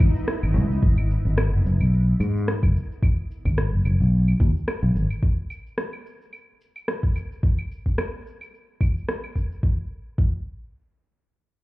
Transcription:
Already playing: B3 D#4 E4
0.00 G#1, kick, claves, shaker
0.16 shaker
0.28 cross-stick, shaker
0.43 G#1, claves
0.54 C#2, high conga, shaker
0.70 C#2, shaker
0.83 G#1, kick, shaker
0.98 claves
1.11 shaker
1.25 G#1, shaker
1.38 cross-stick, claves, shaker
1.53 F#1
1.65 F#1, shaker
1.80 B1, claves, shaker
1.94 shaker
2.20 G#2, claves, shaker
2.37 shaker
2.48 cross-stick, shaker
2.63 F#1, kick, claves
2.76 shaker
2.92 shaker
3.03 kick, claves, shaker
3.31 shaker
3.45 G#1, kick, claves, shaker
3.58 cross-stick, shaker
3.73 F#1
3.85 F#1, claves, shaker
4.00 B1, shaker
4.14 shaker
4.28 claves
4.40 D#2, kick, shaker
4.57 shaker
4.68 cross-stick, claves, shaker
4.83 B1
4.95 G#1, shaker
5.10 claves, shaker
5.23 kick, shaker
5.50 claves, shaker
5.66 shaker
5.78 cross-stick, shaker
5.93 claves
6.06 shaker
6.21 shaker
6.33 claves, shaker
6.61 shaker
6.76 claves, shaker
6.88 cross-stick, shaker
7.03 kick
7.16 claves, shaker
7.32 shaker
7.43 kick, shaker
7.58 claves
7.72 shaker
7.86 kick, shaker
7.98 cross-stick, claves, shaker
8.27 shaker
8.41 claves, shaker
8.54 shaker
8.81 kick, claves, shaker
8.97 shaker
9.09 cross-stick, shaker
9.24 claves
9.36 kick, shaker
9.52 shaker
9.63 kick
10.18 kick

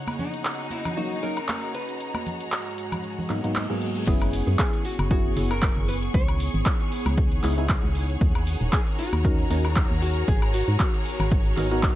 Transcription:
Already playing: C#4 D#4 F#4 C#5 D#5 F#5 A#5 F#6
0.07 G#4, high conga, high woodblock
0.19 D#4, low conga, cabasa
0.34 closed hi-hat, cabasa
0.45 clap, closed hi-hat, cabasa
0.59 A#5
0.70 E4, closed hi-hat, high conga, cabasa
0.85 closed hi-hat, low conga, cabasa, high woodblock
0.97 F#3 A#3 C#4 D#4 F#4, cabasa
1.23 F#3 A#3 C#4 D#4 A#4, closed hi-hat, cabasa
1.37 closed hi-hat, cabasa, high woodblock
1.48 clap, closed hi-hat, high conga, cabasa
1.74 B4, closed hi-hat, cabasa
1.89 closed hi-hat, cabasa
2.00 G#2 G#3, closed hi-hat, cabasa
2.14 high conga, high woodblock
2.26 closed hi-hat, low conga, cabasa
2.41 closed hi-hat, cabasa
2.52 clap, closed hi-hat, cabasa
2.78 closed hi-hat, cabasa
2.92 closed hi-hat, low conga, cabasa, high woodblock
3.04 closed hi-hat, reverse cymbal, cabasa
3.19 low conga
3.30 G#2 F#3 A#3 B3 D#4, clap, closed hi-hat, cabasa
3.44 G#2 F#3 A#3 B3 D#4, closed hi-hat, cabasa
3.55 clap, closed hi-hat, high conga, cabasa
3.70 G#2 F#3 A#3 B3 G#4
3.82 closed hi-hat, cabasa
3.96 closed hi-hat, cabasa
4.07 F#1 B3 C#4 E4 G#4, kick, closed hi-hat, crash, cabasa
4.22 closed hi-hat, high woodblock
4.33 open hi-hat, cabasa
4.47 F#2, closed hi-hat, cabasa
4.59 G#4 C#6, kick, clap, closed hi-hat, cabasa
4.73 closed hi-hat
4.85 F#4, open hi-hat, cabasa
4.99 F#1, closed hi-hat, cabasa, high woodblock
5.11 B3 C#4 E4 F#4 G#4, kick, closed hi-hat, cabasa
5.37 F#1 B3 C#4 E4 G#4, open hi-hat, cabasa
5.51 A#4, closed hi-hat, cabasa, high woodblock
5.62 kick, clap, closed hi-hat, cabasa
5.77 F#1
5.88 B4, open hi-hat, cabasa
6.02 closed hi-hat, cabasa
6.14 C#2 D#4 E4 C#5, kick, closed hi-hat, cabasa
6.28 closed hi-hat, high woodblock
6.40 C#5, open hi-hat, cabasa
6.54 G#1, closed hi-hat, cabasa
6.66 kick, clap, closed hi-hat, cabasa
6.80 closed hi-hat
6.84 F#5
6.92 open hi-hat, cabasa
7.06 C#2, closed hi-hat, cabasa, high woodblock
7.15 B4, kick, closed hi-hat, cabasa
7.32 closed hi-hat
7.43 C#2 B3 D#4 E4 G#4, clap, open hi-hat, cabasa
7.58 B3 D#4 E4 G#4, closed hi-hat, cabasa
7.69 kick, clap, closed hi-hat, cabasa
7.84 C#2
7.95 open hi-hat, cabasa
8.09 closed hi-hat, cabasa
8.21 D#2 C#4 F#4 A#4, kick, closed hi-hat, cabasa
8.35 closed hi-hat, high woodblock
8.47 open hi-hat, cabasa
8.58 D#1 A#5, closed hi-hat, cabasa
8.73 G#4, kick, clap, closed hi-hat, cabasa
8.87 closed hi-hat
8.99 F#4, open hi-hat, cabasa
9.13 D#2, closed hi-hat, cabasa, high woodblock
9.25 C#4 D#4 F#4 A#4, kick, closed hi-hat, cabasa
9.50 D#2 C#4 D#4 F#4 A#4, open hi-hat, cabasa
9.65 E4, closed hi-hat, cabasa, high woodblock
9.76 kick, clap, closed hi-hat, cabasa
9.91 D#2
10.02 F#4, open hi-hat, cabasa
10.16 closed hi-hat, cabasa
10.28 G#1 B3 G#4, kick, closed hi-hat, cabasa
10.42 closed hi-hat, high woodblock
10.54 F#4, open hi-hat, cabasa
10.68 G#2, closed hi-hat, cabasa
10.80 kick, clap, closed hi-hat, cabasa
10.94 closed hi-hat
11.06 open hi-hat, cabasa
11.20 G#1, closed hi-hat, cabasa, high woodblock
11.32 kick, closed hi-hat, cabasa
11.46 closed hi-hat
11.57 G#1 B3 D#4 F#4 A#4, clap, open hi-hat, cabasa
11.71 B3 D#4 F#4 A#4, closed hi-hat, cabasa
11.83 kick, clap, closed hi-hat, cabasa

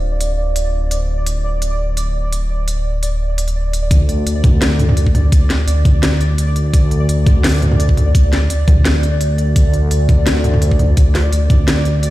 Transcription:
Already playing: D1 D4 G4 C5 D5 F5
0.21 closed hi-hat
0.56 closed hi-hat
0.91 closed hi-hat
1.27 closed hi-hat
1.62 closed hi-hat
1.97 closed hi-hat
2.33 closed hi-hat
2.68 closed hi-hat
3.03 closed hi-hat
3.38 closed hi-hat
3.48 closed hi-hat
3.73 closed hi-hat
3.91 D2 D5, kick, closed hi-hat
4.09 closed hi-hat
4.26 D2, closed hi-hat
4.44 kick, closed hi-hat, mid tom
4.62 snare, closed hi-hat
4.79 closed hi-hat, mid tom
4.89 mid tom
4.97 closed hi-hat
5.06 kick
5.15 closed hi-hat, mid tom
5.32 D2, kick, closed hi-hat
5.50 snare, closed hi-hat
5.68 D2, closed hi-hat
5.85 kick, closed hi-hat, mid tom
6.03 snare, closed hi-hat
6.21 closed hi-hat
6.38 closed hi-hat
6.56 closed hi-hat
6.74 D2, kick, closed hi-hat
6.91 closed hi-hat
7.08 D2, closed hi-hat
7.27 kick, closed hi-hat, mid tom
7.44 snare, closed hi-hat
7.47 closed hi-hat
7.49 closed hi-hat
7.52 closed hi-hat
7.54 closed hi-hat
7.56 closed hi-hat
7.58 closed hi-hat
7.60 closed hi-hat
7.62 closed hi-hat, mid tom
7.72 mid tom
7.80 closed hi-hat
7.89 kick
7.97 closed hi-hat, mid tom
8.15 D2, kick, closed hi-hat
8.33 snare, closed hi-hat
8.50 closed hi-hat
8.68 D2, kick, closed hi-hat, mid tom
8.85 snare, closed hi-hat
9.03 closed hi-hat
9.21 closed hi-hat
9.38 closed hi-hat
9.56 D2, kick, closed hi-hat
9.73 closed hi-hat
9.91 D2, closed hi-hat
10.09 kick, closed hi-hat, mid tom
10.27 snare, closed hi-hat
10.44 closed hi-hat, mid tom
10.54 mid tom
10.62 closed hi-hat
10.71 kick
10.79 closed hi-hat, mid tom
10.97 D2, kick, closed hi-hat
11.15 snare, closed hi-hat
11.32 D2, closed hi-hat
11.50 kick, closed hi-hat, mid tom
11.68 snare, closed hi-hat
11.85 closed hi-hat
12.03 closed hi-hat

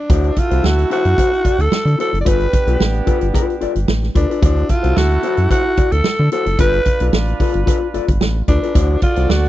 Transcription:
Already playing: D4
0.09 D2 E4 F#4 A4 C5, kick, closed hi-hat
0.24 closed hi-hat
0.36 F4, muted clean electric guitar stroke, kick, closed hi-hat
0.51 C2 E4 F#4 C5, closed hi-hat
0.64 D2 F#4, muted clean electric guitar stroke, snare
0.78 muted clean electric guitar stroke, closed hi-hat
0.90 E4 F#4 C5, closed hi-hat
1.05 F#2, muted clean electric guitar stroke, closed hi-hat
1.18 E4 F#4 C5, kick, closed hi-hat
1.32 muted clean electric guitar stroke, closed hi-hat
1.45 D2 E4 F#4 D5, kick, closed hi-hat
1.58 D2 A4, muted clean electric guitar stroke, closed hi-hat
1.72 muted clean electric guitar stroke, snare
1.85 D3, muted clean electric guitar stroke, closed hi-hat
1.98 E4 F#4 A4 C5, closed hi-hat
2.12 F#1, muted clean electric guitar stroke, closed hi-hat
2.21 D5
2.25 G1 B3 D4 F4 G4 A4 B4, kick, closed hi-hat
2.40 closed hi-hat
2.53 muted clean electric guitar stroke, kick, closed hi-hat
2.67 B1 F4 A4 B4, closed hi-hat
2.79 A1, muted clean electric guitar stroke, snare
2.93 muted clean electric guitar stroke, closed hi-hat
3.06 F4 A4 B4, kick, closed hi-hat
3.21 G1, muted clean electric guitar stroke, closed hi-hat
3.33 F4 A4 B4, kick, closed hi-hat
3.48 muted clean electric guitar stroke, closed hi-hat
3.61 G1 F4 A4 D5, closed hi-hat
3.75 G1, muted clean electric guitar stroke, closed hi-hat
3.88 A1, muted clean electric guitar stroke, snare
4.02 muted clean electric guitar stroke, snare
4.15 D2 D4 F4 A4 B4, kick, closed hi-hat
4.29 F4 A4 B4, closed hi-hat
4.42 D2 D4 E4 F#4 A4 C5, kick, closed hi-hat
4.57 closed hi-hat
4.69 F4, muted clean electric guitar stroke, kick, closed hi-hat
4.83 C2 E4 F#4 C5, closed hi-hat
4.96 D2 F#4, muted clean electric guitar stroke, snare
5.10 muted clean electric guitar stroke, closed hi-hat
5.23 E4 F#4 C5, closed hi-hat
5.37 F#2, muted clean electric guitar stroke, closed hi-hat
5.50 E4 F#4 C5, kick, closed hi-hat
5.65 muted clean electric guitar stroke
5.77 D2 E4 F#4 D5, kick, closed hi-hat
5.92 D2 A4, muted clean electric guitar stroke, closed hi-hat
6.04 muted clean electric guitar stroke, snare
6.19 D3, muted clean electric guitar stroke
6.32 E4 F#4 A4 C5, closed hi-hat
6.46 F#1, muted clean electric guitar stroke, closed hi-hat
6.58 G1 D4 F4 A4 B4, kick, closed hi-hat
6.73 closed hi-hat
6.85 muted clean electric guitar stroke, kick, closed hi-hat
7.00 B1 F4 A4 B4, closed hi-hat
7.13 A1, muted clean electric guitar stroke, snare
7.28 muted clean electric guitar stroke, closed hi-hat
7.40 F4 A4 B4, kick, open hi-hat
7.54 G1, muted clean electric guitar stroke, closed hi-hat
7.66 F4 A4 B4, kick, closed hi-hat
7.81 muted clean electric guitar stroke
7.94 G1 F4 A4 D5, closed hi-hat
8.08 G1, muted clean electric guitar stroke, kick, closed hi-hat
8.21 A1, muted clean electric guitar stroke, snare
8.35 muted clean electric guitar stroke
8.48 D2 D4 F4 A4 B4, kick, closed hi-hat
8.62 F4 A4 B4, closed hi-hat
8.75 D2 E4 F#4 A4 C5 D5, kick, closed hi-hat
9.02 F4, muted clean electric guitar stroke, kick, closed hi-hat
9.16 C2 E4 F#4 C5, closed hi-hat
9.29 D2 F#4, muted clean electric guitar stroke, snare
9.44 muted clean electric guitar stroke, closed hi-hat

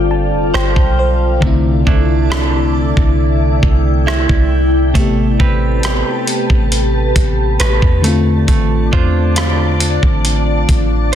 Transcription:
Already playing: G1 D3 G3 C4 D4 F4 A4 C5 D5 F5
0.11 A5
0.32 F1
0.54 G1 C5 G5, cross-stick
0.76 B1, kick
0.99 C5
1.40 C2 C3 D3 A3 E4 D5 A5, kick
1.44 C4 E4
1.86 C2 A3 D4 E4, kick
2.30 D4, cross-stick
2.97 C2, kick
3.19 G5
3.63 C2, kick
4.07 E4, cross-stick
4.29 C2, kick
4.93 A1 C3 A3 G4 B4 A5, kick, closed hi-hat
4.97 B3 G4
5.39 A1 C4 G4 B4, kick
5.83 G4, cross-stick, closed hi-hat
6.27 closed hi-hat
6.50 A1, kick
6.72 closed hi-hat
7.16 A1, kick, closed hi-hat
7.60 A1 B4, cross-stick, closed hi-hat
7.82 E2, kick
8.02 D3 A3 D4 D5 A5, closed hi-hat
8.06 C4 F4
8.48 A1 A3, kick, closed hi-hat
8.92 E2 D4 F4 C5, kick
9.36 F4, cross-stick, closed hi-hat
9.80 closed hi-hat
10.03 A1, kick
10.25 closed hi-hat
10.69 A1, kick, closed hi-hat

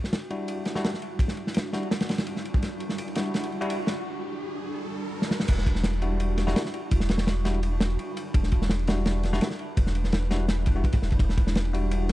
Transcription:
Already playing: E1 G3 D4 E4 F#4, riser
0.04 snare
0.13 snare, ride
0.22 ride
0.30 G3 D4 E4 F#4, ride
0.48 ride
0.65 snare, ride
0.75 G3 D4 E4 F#4, snare
0.84 snare, ride
0.94 snare
1.02 ride
1.19 E1, kick, ride
1.28 snare
1.37 ride
1.47 snare
1.54 snare, ride
1.73 G3 D4 E4 F#4, snare, ride
1.83 ride
1.91 snare, ride
2.00 snare, ride
2.09 snare, ride
2.18 snare, ride
2.27 ride
2.36 snare
2.45 ride
2.54 kick
2.62 E1, snare, ride
2.80 ride
2.89 snare
2.98 ride
3.08 ride
3.15 G3 D4 E4 F#4, snare, ride
3.25 ride
3.34 snare, ride
3.44 ride
3.52 ride
3.61 G3 D4 E4 F#4, ride
3.70 ride
3.87 snare, ride
5.22 snare
5.31 snare
5.40 snare
5.48 E1 G3 D4 E4 F#4, kick, crash, ride
5.58 snare
5.67 kick, ride
5.75 snare
5.84 snare, ride
5.94 ride
6.02 G3 D4 E4 F#4, ride
6.20 ride
6.38 snare, ride
6.47 G3 D4 E4 F#4, snare
6.56 snare, ride
6.65 snare
6.74 ride
6.91 E1, kick, ride
7.00 snare
7.09 snare, ride
7.18 snare, ride
7.27 snare, ride
7.45 G3 D4 E4 F#4, snare, ride
7.54 ride
7.63 ride
7.80 snare, ride
7.90 ride
7.99 ride
8.17 ride
8.34 E1 B4, kick, ride
8.43 snare
8.52 kick, ride
8.62 snare
8.70 snare, ride
8.79 ride
8.87 G3 D4 E4 F#4, snare, ride
9.05 snare, ride
9.23 snare, ride
9.33 G3 D4 E4 F#4, snare
9.41 snare, ride
9.50 snare
9.59 ride
9.77 E1, kick, ride
9.86 snare
9.95 ride
10.04 snare
10.12 snare, ride
10.31 G3 D4 E4 F#4, snare, ride
10.40 ride
10.48 snare, ride
10.66 kick, ride
10.76 G3 D4 E4 F#4
10.84 kick, ride
10.92 kick, ride
11.02 E1, snare
11.10 kick, ride
11.19 E1 F#4, kick, ride
11.29 snare
11.38 kick, ride
11.47 snare
11.55 snare, ride
11.65 ride
11.73 G3 D4 E4 F#4, ride
11.91 ride

